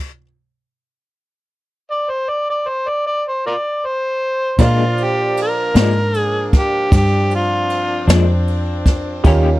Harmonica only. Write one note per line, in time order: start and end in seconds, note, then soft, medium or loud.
1.91 2.11 D5 medium
2.10 2.30 C5 medium
2.29 2.45 D5 medium
2.50 2.70 D5 medium
2.68 2.90 C5 medium
2.89 3.04 D5 medium
3.07 3.23 D5 medium
3.28 3.44 C5 medium
3.47 3.55 F4 soft
3.47 3.53 A#4 soft
3.47 3.87 D5 medium
3.85 4.58 C5 medium
4.63 5.05 F4 medium
5.03 5.38 G4 medium
5.42 6.18 A#4 medium
6.18 6.52 G#4 medium
6.58 6.93 G4 medium
6.96 7.31 G4 medium
7.35 8.08 F4 loud